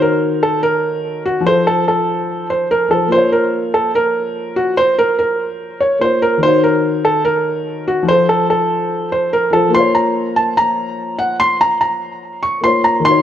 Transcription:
0.00 1.40 D#3 medium
0.00 1.42 D#4 medium
0.00 1.44 F#4 medium
0.00 0.41 A#4 medium
0.00 1.46 C#5 medium
0.43 0.59 A4 medium
0.63 1.22 A#4 medium
1.25 1.42 F#4 medium
1.41 2.85 F3 medium
1.41 2.87 F4 medium
1.47 2.89 A4 medium
1.47 1.63 C5 loud
1.51 2.91 C5 medium
1.67 1.84 A4 medium
1.88 2.46 A4 medium
2.50 2.67 C5 medium
2.71 2.87 A#4 medium
2.89 3.11 F3 medium
2.89 3.09 F4 soft
2.89 3.07 A4 medium
2.89 3.12 A4 soft
2.94 3.12 C5 medium
3.07 5.95 A#3 medium
3.07 5.97 F4 medium
3.12 3.29 C5 medium
3.12 5.99 C5 medium
3.17 6.00 C#5 medium
3.32 3.71 A#4 medium
3.74 3.91 A4 medium
3.95 4.53 A#4 medium
4.56 4.73 F#4 medium
4.77 4.94 C5 loud
4.98 5.15 A#4 medium
5.19 5.77 A#4 medium
5.80 5.97 C#5 medium
5.99 6.42 A#3 soft
5.99 6.42 F4 soft
5.99 6.18 C5 medium
5.99 6.43 C5 soft
6.04 6.44 C#5 medium
6.22 6.39 A#4 medium
6.38 8.02 D#3 medium
6.38 8.04 D#4 medium
6.43 8.06 F#4 medium
6.43 6.59 C5 loud
6.49 8.08 C#5 medium
6.64 7.02 A#4 medium
7.05 7.21 A4 medium
7.25 7.83 A#4 medium
7.88 8.04 F#4 medium
8.03 9.47 F3 medium
8.03 9.49 F4 medium
8.08 9.51 A4 medium
8.08 8.25 C5 loud
8.14 9.53 C5 medium
8.29 8.46 A4 medium
8.50 9.08 A4 medium
9.12 9.29 C5 medium
9.33 9.49 A#4 medium
9.51 9.73 F3 medium
9.51 9.71 F4 soft
9.51 9.70 A4 medium
9.51 9.74 A4 soft
9.56 9.74 C5 medium
9.69 12.57 A#3 medium
9.69 12.59 F4 medium
9.74 12.61 C5 medium
9.74 9.91 C6 loud
9.80 12.62 C#5 medium
9.95 10.34 A#5 medium
10.36 10.53 A5 medium
10.57 11.15 A#5 medium
11.19 11.35 F#5 medium
11.40 11.56 C6 loud
11.61 11.77 A#5 medium
11.81 12.39 A#5 medium
12.43 12.59 C#6 medium
12.61 13.04 A#3 soft
12.61 13.05 F4 soft
12.61 13.05 C5 soft
12.61 12.80 C6 medium
12.66 13.06 C#5 medium
12.84 13.01 A#5 medium
13.00 13.22 D#3 medium
13.00 13.22 D#4 medium
13.05 13.22 F#4 medium
13.05 13.22 C6 loud
13.11 13.22 C#5 medium

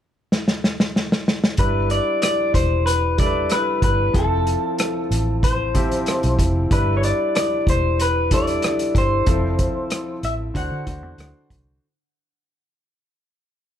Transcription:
0.32 snare medium
0.48 snare medium
0.64 snare medium
0.80 snare medium
0.96 snare medium
1.12 snare medium
1.28 snare medium
1.44 snare medium
1.57 1.99 G1 medium
1.57 2.44 G3 medium
1.57 2.44 D4 medium
1.57 2.45 E4 medium
1.57 1.91 B4 medium
1.57 2.45 B4 medium
1.57 kick medium
1.57 closed hi-hat medium
1.90 2.21 D5 medium
1.90 closed hi-hat medium
2.22 2.54 D5 medium
2.22 cross-stick loud
2.22 closed hi-hat medium
2.54 3.47 E1 medium
2.54 2.86 C5 medium
2.54 kick medium
2.54 closed hi-hat medium
2.86 3.19 B4 medium
2.86 closed hi-hat medium
3.18 3.82 G3 medium
3.18 3.83 D4 medium
3.18 3.83 E4 medium
3.18 3.26 A4 medium
3.18 3.52 D5 medium
3.18 kick medium
3.18 closed hi-hat medium
3.26 3.87 B4 medium
3.49 3.83 B4 medium
3.49 cross-stick medium
3.49 closed hi-hat medium
3.82 4.09 G1 medium
3.82 4.16 B4 medium
3.82 kick medium
3.82 closed hi-hat medium
4.13 4.55 F1 medium
4.13 5.00 F3 medium
4.13 5.00 C4 medium
4.13 5.00 E4 medium
4.13 5.00 A4 medium
4.13 5.39 A4 medium
4.13 kick loud
4.13 closed hi-hat medium
4.47 closed hi-hat medium
4.78 cross-stick loud
4.78 closed hi-hat medium
5.11 6.03 A1 medium
5.11 closed hi-hat medium
5.43 6.35 C5 medium
5.43 kick medium
5.43 closed hi-hat medium
5.74 6.39 F3 medium
5.74 6.39 C4 medium
5.74 6.39 E4 medium
5.74 6.40 G4 medium
5.74 kick medium
5.74 cross-stick soft
5.74 closed hi-hat medium
5.91 closed hi-hat soft
6.06 cross-stick medium
6.06 closed hi-hat medium
6.23 6.37 B1 medium
6.23 closed hi-hat soft
6.39 6.66 F1 medium
6.39 kick medium
6.39 closed hi-hat medium
6.70 7.11 G1 loud
6.70 7.56 G3 medium
6.70 7.57 D4 medium
6.70 7.57 E4 medium
6.70 7.57 B4 medium
6.70 6.97 B4 medium
6.70 kick loud
6.70 closed hi-hat medium
6.97 7.03 C#5 medium
7.03 7.35 D5 medium
7.03 closed hi-hat medium
7.35 7.65 D5 medium
7.35 cross-stick loud
7.35 closed hi-hat medium
7.67 8.59 E1 medium
7.67 8.01 C5 medium
7.67 kick medium
7.67 closed hi-hat medium
8.00 8.33 B4 medium
8.00 closed hi-hat medium
8.31 8.95 G3 medium
8.31 8.95 D4 medium
8.31 8.96 E4 medium
8.31 8.96 A4 medium
8.31 8.98 D5 medium
8.31 kick medium
8.31 closed hi-hat medium
8.47 closed hi-hat soft
8.62 cross-stick medium
8.62 closed hi-hat medium
8.79 closed hi-hat soft
8.95 9.22 G1 medium
8.95 10.20 C5 medium
8.95 kick medium
8.95 closed hi-hat medium
9.26 9.67 F1 medium
9.26 10.12 F3 medium
9.26 10.12 C4 medium
9.26 10.13 E4 medium
9.26 10.13 A4 medium
9.26 kick loud
9.26 closed hi-hat medium
9.59 kick medium
9.59 closed hi-hat medium
9.90 cross-stick loud
9.90 closed hi-hat medium
10.23 10.50 A1 medium
10.23 10.33 E5 medium
10.23 closed hi-hat medium
10.54 10.68 D2 medium
10.54 10.80 D3 medium
10.54 10.80 D4 medium
10.54 10.81 F#4 medium
10.54 10.81 C5 medium
10.54 11.48 F#5 medium
10.54 kick medium
10.54 closed hi-hat medium
10.71 10.84 D3 medium
10.86 11.03 D2 medium
10.86 11.50 D3 medium
10.86 11.51 D4 medium
10.86 11.51 F#4 medium
10.86 11.51 C5 medium
10.86 kick medium
10.86 closed hi-hat medium
11.03 11.16 E2 medium
11.18 11.32 D2 medium
11.18 cross-stick medium
11.18 closed hi-hat medium
11.50 11.77 C2 medium
11.50 kick medium
11.50 closed hi-hat medium

